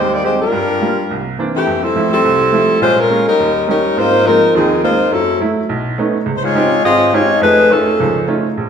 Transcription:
Already playing: upright piano D#2 G3, saxophone section G#3 D#4 G4 C5
0.13 saxophone section A#3 D#4 G4 D5
0.24 upright piano G#3 C4 G4, saxophone section G#3 D#4 G4 C5
0.42 saxophone section G3 D4 F4 A#4
0.52 upright piano G2 G3
0.81 upright piano G3 A#3 F4
1.11 upright piano C2
1.39 upright piano E3 A#3 C4 D4
1.56 saxophone section E3 A3 C4 G4
1.67 upright piano F2
1.83 saxophone section G3 C4 E4 A4
1.96 upright piano F3 G3 A3 E4
2.13 saxophone section G3 C4 E4 A4
2.25 upright piano C2
2.52 upright piano F3 G3 A3 E4
2.81 upright piano A#1, saxophone section G#3 C#4 F4 C5
3.00 saxophone section G#3 C#4 F4 A#4
3.10 upright piano G#3 A#3 C#4
3.28 saxophone section G3 C#4 D#4 A#4
3.40 upright piano D#2
3.68 upright piano G3 C#4 D#4, saxophone section G3 C#4 D#4 A#4
3.97 upright piano G#2 C4, saxophone section A#3 D#4 F4 C5
4.26 saxophone section F3 C4 D#4 A#4, upright piano G#3 A#3 C4 F4
4.55 upright piano D#2 D#3, saxophone section F3 C4 D#4 G#4
4.83 upright piano G#3 A#3 C4 F4, saxophone section A#3 D#4 F4 C5
5.12 upright piano F#2, saxophone section F#3 C#4 E4 A4
5.40 upright piano F#3 A3 E4
5.69 upright piano B1
5.98 upright piano A3 B3 C#4 D#4
6.26 upright piano C#2
6.37 saxophone section C5
6.44 saxophone section G#3 D#4 F4 C#5
6.55 upright piano C4 C#4 D#4 F4 G4
6.84 upright piano G#1, saxophone section C4 F4 G#4 D#5
7.14 saxophone section G#3 D#4 F4 C#5, upright piano C4 C#4 D#4 F4 G4
7.41 upright piano F2 A3, saxophone section A3 D#4 G#4 B4
7.71 saxophone section D#3 C#4 G#4 A4, upright piano A3 C#4 D#4 F4
8.00 upright piano C#2 F3
8.28 upright piano A3 C#4 D#4 F4
8.57 upright piano A#1

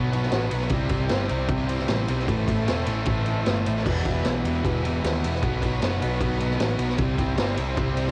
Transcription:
Already playing: picked electric bass B1, distorted electric guitar B2 F#3 B3, transistor combo organ D#4 F#4 B4
0.12 distorted electric guitar F#3 B3, ride
0.23 snare
0.31 picked electric bass A1, distorted electric guitar B2 F#3 B3, snare, ride
0.51 picked electric bass B1, distorted electric guitar F#3 B3, ride
0.60 snare
0.70 picked electric bass C2, distorted electric guitar C3 G3, transistor combo organ E4, kick, ride
0.74 distorted electric guitar C4, transistor combo organ G4 C5
0.89 picked electric bass C2, distorted electric guitar G3 C4, kick, ride
1.09 picked electric bass G1, distorted electric guitar C3 G3, snare, ride
1.14 distorted electric guitar C4
1.28 picked electric bass C2, distorted electric guitar C3 G3 C4, ride
1.48 picked electric bass C2, distorted electric guitar C3 G3 C4, kick, ride
1.67 distorted electric guitar G3 C4, ride
1.79 snare
1.87 picked electric bass A1, distorted electric guitar C3 G3 C4, snare, ride
2.07 picked electric bass B1, distorted electric guitar G3 C4, ride
2.19 snare
2.26 picked electric bass A1, distorted electric guitar A2 E3 A3, transistor combo organ E4 A4, kick, ride
2.31 transistor combo organ C5
2.47 picked electric bass A1, distorted electric guitar E3 A3, kick, ride
2.66 picked electric bass E1, distorted electric guitar A2 E3 A3, snare, ride
2.86 picked electric bass A1, distorted electric guitar A2 E3 A3, ride
3.06 picked electric bass A1, distorted electric guitar A2 E3 A3, kick, ride
3.26 distorted electric guitar E3 A3, ride
3.45 picked electric bass G1, distorted electric guitar A2 E3 A3, snare, ride
3.66 picked electric bass A1, distorted electric guitar E3 A3, ride
3.77 snare
3.82 distorted electric guitar E2, transistor combo organ E4 G4 B4, kick
3.86 picked electric bass E1, distorted electric guitar B2 E3, crash
4.04 picked electric bass E1, distorted electric guitar B2 E3, kick, ride
4.24 picked electric bass B1, distorted electric guitar E2 B2, snare, ride
4.28 distorted electric guitar E3
4.44 picked electric bass E1, distorted electric guitar E2 B2 E3, ride
4.63 picked electric bass E1, distorted electric guitar E2 B2 E3, kick, ride
4.83 distorted electric guitar B2 E3, ride
5.02 picked electric bass D#2, distorted electric guitar E2 B2 E3, snare, ride
5.22 picked electric bass E1, distorted electric guitar B2 E3, ride
5.35 snare
5.41 picked electric bass B1, distorted electric guitar B2 F#3, transistor combo organ D#4 F#4 B4, kick, ride
5.45 distorted electric guitar B3
5.62 picked electric bass B1, distorted electric guitar F#3 B3, kick, ride
5.81 picked electric bass F#1, distorted electric guitar B2 F#3 B3, snare, ride
6.00 picked electric bass B1, distorted electric guitar B2 F#3 B3, ride
6.19 picked electric bass B1, distorted electric guitar B2 F#3 B3, kick, ride
6.38 distorted electric guitar F#3 B3, ride
6.51 snare
6.58 picked electric bass A1, distorted electric guitar B2 F#3 B3, snare, ride
6.78 picked electric bass B1, distorted electric guitar F#3 B3, ride
6.89 snare
6.98 picked electric bass C2, distorted electric guitar C3 G3 C4, transistor combo organ E4 G4, kick, ride
7.02 transistor combo organ C5
7.17 picked electric bass C2, distorted electric guitar G3 C4, kick, ride
7.36 picked electric bass G1, distorted electric guitar C3 G3 C4, snare, ride
7.55 picked electric bass C2, distorted electric guitar C3 G3 C4, ride
7.75 picked electric bass C2, distorted electric guitar C3 G3 C4, kick, ride
7.95 distorted electric guitar G3 C4, ride
8.07 snare

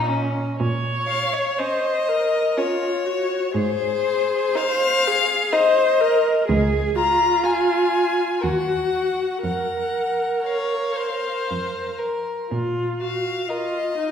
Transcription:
Already playing: cello A#2, viola C#4, violin D#4
0.09 violin C#4
0.59 cello A#2, viola C#5
1.08 violin F5
1.34 violin C#5
1.58 violin C#4 D#5, viola C5
2.08 viola A#4
2.57 violin C#4 C#5, viola F4
3.06 viola F#4
3.54 cello G#2, viola G#4, violin C5
4.55 violin D#4 F5, viola C5
5.07 viola G#4
5.53 violin D#4 D#5, viola C5
6.00 viola A#4
6.47 cello C#2, viola G#4
6.95 viola F4, violin A#5
7.44 violin F4 G#5
8.41 cello D#2, viola F#4, violin A#4 F#5
9.43 cello F2, viola A#4, violin F#5
10.43 violin C#5 F5
10.96 violin C5
11.50 cello F2
11.99 violin A#4
12.50 cello A#2, viola F4
13.01 viola F#4, violin F5
13.49 viola F4, violin A#4 D#5
13.98 viola D#4

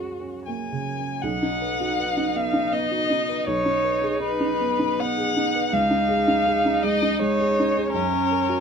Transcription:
Already playing: felt piano F#2 C#4 F#4 G#4, violin F#4
0.20 felt piano C#4
0.45 felt piano A#3, violin G#5
0.72 felt piano C#3
0.99 felt piano C#4
1.22 felt piano B1, viola D#4, violin F#5
1.42 felt piano D#4
1.61 felt piano B4
1.80 felt piano F#4
1.99 felt piano B4
2.17 felt piano D#4
2.36 felt piano B3, violin F5
2.53 felt piano D#4
2.72 felt piano B3, violin D#5
2.91 felt piano F#4
3.10 felt piano D#4
3.29 felt piano B4
3.47 felt piano B1, violin C#5
3.65 felt piano D#4
3.84 felt piano B4
4.02 felt piano G#4
4.20 felt piano B4, violin B4
4.40 felt piano D#4
4.61 felt piano B3
4.79 felt piano D#4
4.99 felt piano B3, violin F#5
5.18 felt piano G#4
5.37 felt piano D#4
5.55 felt piano B4
5.73 felt piano C#2, viola D#4, violin F5
5.90 felt piano D#4
6.09 felt piano G#4
6.28 felt piano D#4
6.46 felt piano G#4
6.65 felt piano D#4
6.83 felt piano G#3, violin D#5
7.02 felt piano D#4
7.19 felt piano G#3, violin C#5
7.40 felt piano G#4
7.60 felt piano D#4
7.77 felt piano G#4
7.93 felt piano F#2, viola C#4, violin A#4
8.13 felt piano C#4
8.31 felt piano A#4
8.49 felt piano F#4

